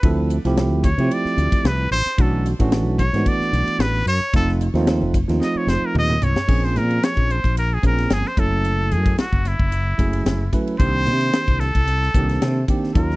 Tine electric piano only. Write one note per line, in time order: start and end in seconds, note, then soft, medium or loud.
0.04 0.36 F3 medium
0.04 0.36 A3 medium
0.04 0.36 C4 medium
0.04 0.36 E4 medium
0.04 0.37 A4 medium
0.45 0.87 F3 medium
0.45 0.87 A3 medium
0.45 0.88 C4 medium
0.45 0.88 E4 medium
0.45 0.88 G4 loud
0.99 1.84 F3 medium
0.99 1.84 A3 medium
0.99 1.84 C4 medium
0.99 1.85 E4 medium
0.99 1.85 G4 medium
2.18 2.51 E3 medium
2.18 2.51 A3 medium
2.18 2.51 C#4 medium
2.18 2.51 D4 medium
2.18 2.52 F#4 medium
2.59 3.02 E3 medium
2.59 3.02 A3 medium
2.59 3.02 C#4 medium
2.59 3.02 D4 medium
2.59 3.03 F#4 loud
3.14 3.99 E3 medium
3.14 3.99 A3 medium
3.14 4.00 B3 medium
3.14 4.00 D4 medium
3.14 4.00 F#4 medium
4.33 4.66 F3 medium
4.33 4.66 A3 medium
4.33 4.67 C4 medium
4.33 4.67 D#4 medium
4.33 4.67 F4 medium
4.75 5.17 F3 medium
4.75 5.17 A3 medium
4.75 5.17 C4 medium
4.75 5.17 D#4 medium
4.75 5.18 F4 medium
5.28 6.14 F3 medium
5.28 6.14 A3 medium
5.28 6.15 C4 medium
5.28 6.15 D#4 medium
5.28 6.15 F4 medium
6.48 7.34 F3 medium
6.48 7.35 A#3 medium
6.48 7.35 C4 medium
6.48 7.35 C#4 medium
6.48 7.35 G#4 medium
7.82 8.27 F3 medium
7.82 8.27 A#3 medium
7.82 8.27 C4 medium
7.82 8.27 C#4 medium
7.82 8.28 G#4 medium
8.37 9.24 F#3 medium
8.37 9.24 A3 medium
8.37 9.24 C#4 medium
8.37 9.25 E4 medium
8.37 9.25 A4 medium
9.98 10.42 F#3 medium
9.98 10.43 A3 medium
9.98 10.43 C#4 medium
9.98 10.43 E4 medium
9.98 10.43 G#4 medium
10.52 10.75 F#3 medium
10.52 10.75 A3 medium
10.52 10.75 C#4 medium
10.52 10.75 E4 medium
10.52 10.76 B4 medium
10.78 11.66 D#3 medium
10.78 11.66 A#3 medium
10.78 11.66 C4 medium
10.78 11.67 D4 medium
10.78 11.67 G4 medium
12.15 12.59 D#3 medium
12.15 12.59 A#3 medium
12.15 12.59 C4 medium
12.15 12.59 D4 medium
12.15 12.60 G4 medium
12.68 12.90 D#3 medium
12.68 12.91 A#3 medium
12.68 12.91 C4 medium
12.68 12.91 D4 medium
12.68 12.91 G4 medium
12.95 13.16 F#3 medium
12.95 13.16 A#3 medium
12.95 13.16 C#4 medium
12.95 13.16 D#4 medium
12.95 13.16 F4 medium